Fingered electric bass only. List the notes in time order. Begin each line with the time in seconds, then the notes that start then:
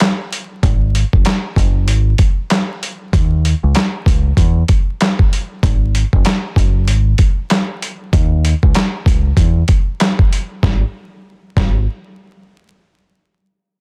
0.63 G#1
1.13 F#1
1.57 F#1
1.89 G#1
3.13 D#2
3.63 C#2
4.07 C#2
4.37 E2
5.63 G#1
6.13 F#1
6.57 F#1
6.89 G#1
8.13 D#2
8.63 C#2
9.06 C#2
9.37 E2
10.63 G#1
11.57 G#1